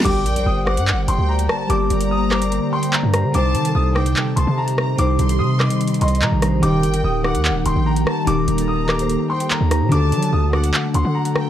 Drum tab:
CC |x-----------------------------------------------|------------------------------------------------|------------------------------------------------|------------------------------------------------|
HH |x-----x--x-----------x--------x--------x--------|x-----x--x-----------x--x--------x--------x-----|x-----x--x-----------x--------x--------x--------|x-----x--x-----------x--x-x-x-x-x-x-------x-----|
CP |------------------------x-----------------------|------------------x-----------------x-----------|------------------------x-----------------------|------------------x-----------------x-----------|
SD |------------------r-----------------------r-----|------------------r-----------------------r-----|------------------r-----------------------r-----|------------------r-----------------------r-----|

CC |------------------------------------------------|------------------------------------------------|------------------------------------------------|
HH |x-----x--x-----------x--------x--------x--------|x-----x--x-----------x--x--------x--------x-----|x-----x--x-----------x--------x--------x--------|
CP |------------------------x-----------------------|------------------x-----------------x-----------|------------------------x-----------------------|
SD |------------------r-----------------------r-----|------------------r-----------------------r-----|------------------r-----------------------r-----|